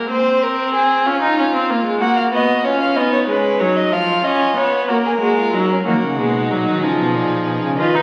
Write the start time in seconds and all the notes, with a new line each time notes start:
Already playing: A#3 A#4
0.11 C4 C5
0.42 A#4
0.74 G#4
1.06 C#4 F4
1.22 D#4
1.38 C#4
1.54 C4
1.70 A#3
1.86 G#3
2.01 A#3 F#4 F#5
2.17 F5
2.33 B3 F#4 D#5
2.65 C#4 F4 C#5
2.80 F5
2.96 B3 D#4 D#5
3.12 C#5
3.28 G#3 C#4 B4
3.60 F#3 D#4 C#5
3.76 D#5
3.92 F3 F4 F5
4.24 C#4 D#5
4.57 B3 C#5
4.89 A#3 F#4 A#4
5.05 G#4
5.21 G#3 F#4
5.38 F4
5.54 F#3 D#4
5.71 C#4
5.86 D#3 A#3 D#4 F#4
6.02 C#3
6.18 B2 G#3
6.51 A#2 F#3
6.67 D#3
6.83 C#3 F3 G#4
6.99 B2
7.15 A#2
7.47 B2
7.63 C#3
7.79 D#3 F4 B4 D#5
7.95 D#4